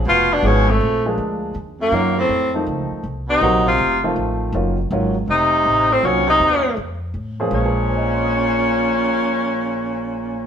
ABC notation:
X:1
M:4/4
L:1/8
Q:"Swing" 1/4=161
K:Bbm
V:1 name="Tenor saxophone"
F =D _D =A,2 z3 | z B,2 C2 z3 | z E2 F2 z3 | z4 E3 C |
D E3 z4 | D8- | D8 |]
V:2 name="Grand piano"
z8 | z8 | z8 | z8 |
z8 | z2 [ceac'e'a'c'']6- | [ceac'e'a'c'']8 |]
V:3 name="Grand piano"
z2 [F,A,_CEA] z2 [F,A,B,=DA]3 | z2 [E,G,B,DF] z2 [E,F,=A,CE]3 | z2 [E,G,B,CG] z2 [E,F,=A,CF]3 | [E,G,B,DF] z [E,G,B,DF] z4 z |
[E,G,B,CG] z6 [F,B,DAc] | [B,,A,B,DA]8- | [B,,A,B,DA]8 |]
V:4 name="Baritone saxophone" clef=bass
_C, C, C, F,,2 z3 | z G,,2 =A,,2 z3 | z C,2 C,2 z3 | z4 C,3 =A,, |
B,, C,3 z4 | B,,8- | B,,8 |]
V:5 name="Upright bass" clef=bass
F,,,2 A,,,2 B,,,2 =D,,2 | E,,2 G,,2 F,,2 D,, z | C,,2 B,,,2 F,,,2 =A,,,2 | G,,,2 A,,,2 F,,,2 =A,,,2 |
C,,2 E,,2 F,,2 =A,,2 | B,,,8- | B,,,8 |]